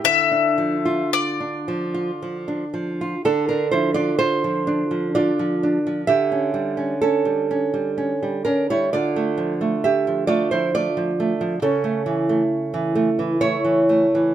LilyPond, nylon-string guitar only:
\new Staff \with { instrumentName = "Nylon-string guitar" } { \time 3/4 \key d \minor \tempo 4 = 63 << { r2. | <d' a'>16 <d' bes'>16 <e' c''>16 <f' d''>16 <f' c''>4 <f' d''>4 | <g' e''>4 <cis' a'>4. <d' bes'>16 <e' cis''>16 | <f' d''>4 <g' e''>8 <f' d''>16 <e' c''>16 <f' d''>4 |
<cis' a'>2 <e' cis''>4 | } \\ { d16 d'16 f16 f'8 d'16 f16 f'16 f16 d'16 f16 f'16 | d8 f16 d'8 f16 d'16 f16 d'16 f16 d'16 f16 | d16 cis'16 g16 cis'8 g16 cis'16 g16 cis'16 g16 cis'16 g16 | d16 a16 f16 a8 f16 a16 f16 a16 f16 a16 f16 |
cis16 a16 e16 a8 e16 a16 e16 a16 e16 a16 e16 | } >> }